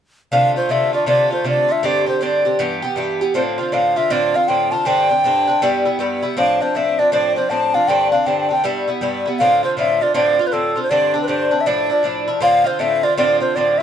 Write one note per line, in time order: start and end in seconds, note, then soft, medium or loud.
0.32 0.56 C3 medium
0.32 0.56 D3 medium
0.32 0.56 A3 medium
0.32 0.55 F4 medium
0.32 0.55 F5 medium
0.56 0.69 D3 soft
0.56 0.69 A3 soft
0.56 0.70 F4 soft
0.56 0.73 C5 medium
0.69 0.93 C3 soft
0.69 0.93 D3 medium
0.69 0.93 A3 medium
0.69 0.92 F4 medium
0.69 0.94 E5 medium
0.93 1.06 D3 soft
0.93 1.06 A3 soft
0.93 1.06 F4 soft
0.93 1.07 D5 medium
1.06 1.31 C3 medium
1.06 1.31 D3 medium
1.06 1.31 A3 medium
1.06 1.30 F4 medium
1.06 1.30 D5 medium
1.31 1.44 D3 soft
1.31 1.44 A3 soft
1.31 1.45 F4 soft
1.31 1.46 C5 medium
1.44 1.69 C3 medium
1.44 1.69 D3 medium
1.44 1.68 A3 medium
1.44 1.67 F4 medium
1.49 1.73 D5 medium
1.69 1.82 D3 soft
1.69 1.84 A3 soft
1.69 1.83 F4 soft
1.69 1.87 E5 medium
1.83 2.07 G2 medium
1.83 2.07 D3 medium
1.83 2.06 C4 medium
1.83 2.05 G4 medium
1.83 2.08 D5 medium
2.06 2.20 D3 soft
2.06 2.21 C4 soft
2.06 2.21 G4 soft
2.06 2.25 C5 medium
2.21 2.45 G2 soft
2.21 2.45 D3 medium
2.21 2.45 C4 medium
2.21 2.44 G4 medium
2.21 2.60 D5 medium
2.45 2.59 D3 soft
2.45 2.59 C4 soft
2.45 2.59 G4 soft
2.59 2.83 G2 medium
2.59 2.83 E3 medium
2.59 2.83 B3 medium
2.59 2.81 G4 medium
2.82 2.96 E3 soft
2.82 2.96 B3 soft
2.82 2.97 G4 medium
2.96 3.20 G2 medium
2.96 3.21 E3 medium
2.96 3.21 B3 medium
2.96 3.20 G4 medium
3.21 3.34 E3 soft
3.21 3.35 B3 soft
3.21 3.35 G4 medium
3.34 3.58 A2 medium
3.34 3.59 D3 medium
3.34 3.58 C4 medium
3.34 3.57 F4 medium
3.34 3.42 C5 medium
3.58 3.71 D3 soft
3.58 3.72 C4 soft
3.58 3.72 F4 soft
3.58 3.75 C5 medium
3.72 3.96 A2 medium
3.72 3.96 D3 medium
3.72 3.96 C4 medium
3.72 3.95 F4 medium
3.72 3.99 F5 medium
3.96 4.09 D3 soft
3.96 4.10 C4 soft
3.96 4.10 F4 soft
3.96 4.13 E5 medium
4.10 4.34 A2 medium
4.10 4.34 D3 medium
4.10 4.34 C4 medium
4.10 4.33 F4 medium
4.10 4.37 D5 medium
4.34 4.48 D3 soft
4.34 4.48 C4 soft
4.34 4.48 F4 soft
4.34 4.50 F5 medium
4.48 4.72 A2 medium
4.48 4.72 D3 soft
4.48 4.72 C4 medium
4.48 4.71 F4 medium
4.48 4.73 G5 medium
4.72 4.85 D3 soft
4.72 4.85 C4 soft
4.72 4.86 F4 soft
4.72 4.88 A5 medium
4.85 5.09 G2 medium
4.85 5.10 D3 medium
4.85 5.09 C4 medium
4.85 5.08 D4 medium
4.85 6.00 G5 loud
5.09 5.24 D3 soft
5.09 5.24 C4 soft
5.09 5.24 D4 soft
5.24 5.48 G2 medium
5.24 5.48 D3 medium
5.24 5.47 C4 medium
5.24 5.46 D4 medium
5.47 5.62 D3 soft
5.47 5.62 C4 soft
5.47 5.62 D4 medium
5.62 5.86 G2 medium
5.62 5.86 G3 medium
5.62 5.85 B3 medium
5.62 5.84 E4 medium
5.85 5.99 G3 soft
5.85 5.99 B3 soft
5.85 6.00 E4 soft
5.99 6.23 G2 medium
5.99 6.23 G3 medium
5.99 6.22 B3 medium
5.99 6.21 E4 medium
6.22 6.37 G3 soft
6.22 6.37 B3 medium
6.22 6.37 E4 medium
6.37 6.61 A2 medium
6.37 6.61 F3 medium
6.37 6.61 C4 medium
6.37 6.59 D4 medium
6.37 6.64 F5 medium
6.61 6.75 F3 soft
6.61 6.75 C4 soft
6.61 6.75 D4 soft
6.61 6.78 C5 medium
6.75 6.99 A2 soft
6.75 6.99 F3 medium
6.75 6.98 C4 medium
6.75 6.98 D4 medium
6.75 7.00 E5 medium
6.99 7.12 F3 soft
6.99 7.12 C4 soft
6.99 7.12 D4 soft
6.99 7.13 D5 medium
7.12 7.36 A2 medium
7.12 7.37 F3 medium
7.12 7.36 C4 medium
7.12 7.35 D4 medium
7.12 7.35 D5 medium
7.36 7.50 F3 soft
7.36 7.50 C4 soft
7.36 7.51 D4 soft
7.36 7.51 C5 medium
7.50 7.74 A2 medium
7.50 7.75 F3 medium
7.50 7.74 C4 medium
7.50 7.73 D4 medium
7.50 7.76 A5 medium
7.74 7.89 F3 soft
7.74 7.88 C4 soft
7.74 7.88 D4 soft
7.74 7.89 F5 medium
7.88 8.12 G2 medium
7.88 8.13 D3 medium
7.88 8.12 C4 medium
7.88 8.11 D4 medium
7.88 8.11 G5 medium
8.12 8.25 D3 soft
8.12 8.26 C4 soft
8.12 8.26 D4 medium
8.12 8.28 F5 medium
8.26 8.50 G2 medium
8.26 8.50 D3 medium
8.26 8.49 C4 medium
8.26 8.48 D4 medium
8.26 8.39 G5 medium
8.40 8.51 G5 medium
8.49 8.64 D3 soft
8.49 8.64 C4 soft
8.49 8.64 D4 soft
8.49 8.63 G5 medium
8.64 8.88 G2 medium
8.64 8.88 G3 medium
8.64 8.87 B3 medium
8.64 8.86 E4 medium
8.88 9.00 G3 soft
8.88 9.01 B3 soft
8.88 9.02 E4 soft
9.01 9.25 G2 medium
9.01 9.26 G3 medium
9.01 9.26 B3 medium
9.01 9.24 E4 medium
9.26 9.40 G3 soft
9.26 9.41 B3 medium
9.26 9.40 E4 medium
9.39 9.64 A2 medium
9.39 9.64 D3 medium
9.39 9.63 C4 medium
9.39 9.62 F4 medium
9.39 9.62 F5 loud
9.63 9.76 D3 soft
9.63 9.77 C4 soft
9.63 9.77 F4 soft
9.63 9.77 C5 medium
9.77 10.01 A2 medium
9.77 10.01 D3 medium
9.77 10.01 C4 medium
9.77 10.00 F4 medium
9.77 10.04 E5 medium
10.01 10.13 D3 soft
10.01 10.14 C4 soft
10.01 10.14 F4 soft
10.01 10.15 D5 medium
10.14 10.39 A2 medium
10.14 10.39 D3 medium
10.14 10.39 C4 medium
10.14 10.38 F4 medium
10.14 10.48 D5 medium
10.39 10.51 D3 soft
10.39 10.52 C4 soft
10.39 10.52 F4 soft
10.47 10.54 B4 medium
10.52 10.76 A2 medium
10.52 10.76 D3 medium
10.52 10.76 C4 medium
10.52 10.75 F4 medium
10.52 10.82 A4 medium
10.76 10.90 D3 soft
10.76 10.90 C4 soft
10.76 10.90 F4 soft
10.83 10.91 C5 medium
10.90 11.15 G2 medium
10.90 11.14 D3 medium
10.90 11.14 C4 medium
10.90 11.13 D4 medium
10.90 11.21 D5 medium
11.14 11.27 D3 soft
11.14 11.28 C4 soft
11.14 11.28 D4 soft
11.22 11.28 B4 medium
11.28 11.52 G2 medium
11.28 11.52 D3 medium
11.28 11.51 C4 medium
11.28 11.50 D4 medium
11.28 11.62 C5 medium
11.51 11.66 D3 soft
11.51 11.66 C4 soft
11.51 11.66 D4 medium
11.61 11.69 E5 medium
11.66 11.90 A2 medium
11.66 11.90 F3 medium
11.66 11.90 D4 medium
11.66 11.89 E4 medium
11.66 12.28 D5 medium
11.90 12.03 F3 soft
11.90 12.03 D4 soft
11.90 12.04 E4 medium
12.03 12.27 A2 soft
12.03 12.28 F3 medium
12.03 12.28 D4 medium
12.03 12.26 E4 medium
12.28 12.41 F3 soft
12.28 12.41 D4 soft
12.28 12.42 E4 medium
12.40 12.65 A2 medium
12.40 12.65 D3 medium
12.40 12.64 C4 medium
12.40 12.63 F4 medium
12.40 12.68 F5 loud
12.64 12.79 D3 soft
12.64 12.80 C4 soft
12.64 12.79 F4 medium
12.64 12.82 C5 medium
12.79 13.03 A2 medium
12.79 13.04 D3 medium
12.79 13.03 C4 medium
12.79 13.02 F4 medium
12.79 13.05 E5 medium
13.03 13.17 D3 soft
13.03 13.17 C4 soft
13.03 13.17 F4 soft
13.03 13.17 D5 medium
13.17 13.41 A2 medium
13.17 13.41 D3 medium
13.17 13.40 C4 medium
13.17 13.39 F4 medium
13.17 13.40 D5 medium
13.40 13.56 D3 soft
13.40 13.56 C4 soft
13.40 13.55 F4 soft
13.40 13.57 C5 medium
13.55 13.80 A2 medium
13.55 13.80 D3 medium
13.55 13.80 C4 medium
13.55 13.79 F4 medium
13.55 13.79 D5 medium
13.78 13.83 E5 medium